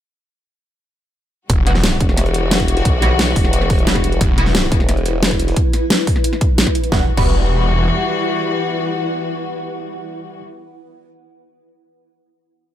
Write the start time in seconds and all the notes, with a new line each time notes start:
1.50 E1 E3 G3 E4 F#4, kick, closed hi-hat
1.55 B4
1.67 G3 B3 E4 F#4, snare, closed hi-hat
1.75 snare
1.84 snare, closed hi-hat
1.92 snare
2.00 E1, kick, closed hi-hat
2.09 snare
2.17 snare, closed hi-hat
2.26 closed hi-hat
2.34 closed hi-hat
2.51 snare, closed hi-hat
2.60 kick, closed hi-hat
2.68 closed hi-hat
2.77 snare, closed hi-hat
2.85 B1, kick, closed hi-hat
3.02 G3 B3 E4 F#4, snare, closed hi-hat
3.19 snare, closed hi-hat
3.36 E1, kick, closed hi-hat, open hi-hat
3.45 snare
3.53 closed hi-hat
3.62 snare
3.70 kick, closed hi-hat, open hi-hat
3.79 closed hi-hat
3.87 G3 B3 E4 F#4, snare, closed hi-hat
3.95 kick, snare, closed hi-hat
4.04 closed hi-hat
4.12 closed hi-hat
4.21 E1, kick, closed hi-hat
4.38 G3 B3 E4 F#4, snare, closed hi-hat
4.46 snare
4.55 snare, closed hi-hat
4.63 snare
4.72 E1, kick, closed hi-hat
4.80 snare
4.89 snare, closed hi-hat
4.97 closed hi-hat
5.06 closed hi-hat
5.23 snare, closed hi-hat
5.31 kick, closed hi-hat
5.40 closed hi-hat
5.48 snare, closed hi-hat
5.56 kick, closed hi-hat
5.73 snare, closed hi-hat
5.90 snare, closed hi-hat
6.07 kick, open hi-hat
6.16 snare
6.24 closed hi-hat
6.33 snare
6.41 kick, closed hi-hat
6.58 snare, closed hi-hat
6.67 kick, snare, closed hi-hat
6.75 closed hi-hat
6.84 closed hi-hat
6.92 E1 E3 G3 B3 E4 F#4, kick, snare
6.97 B4
7.02 F#5
7.17 E1 G3 B3 E4 F#4, kick, crash